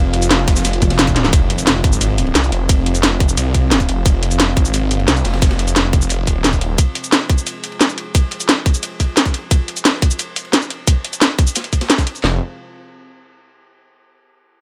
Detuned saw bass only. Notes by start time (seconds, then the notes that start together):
Already playing: F1
0.65 F1
1.33 F1
1.84 G#1
2.35 C2
2.52 F1
3.37 C2
3.89 F1
4.06 F1
4.57 G#1
5.08 C2
5.25 F1
6.10 F1
6.27 D#1
12.24 F1